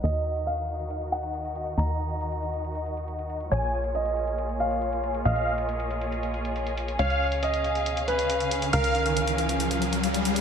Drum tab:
HH |xx-xxxxxxxxxxxxx|xx-xxxxxxxxxxxxx|xx-xxxxxxxxxxxxx|xx-xxxxxxxxxxxxx|

HH |xx-xxxxxxxxxxxxx|xxxxxxxxxxxxxxxx|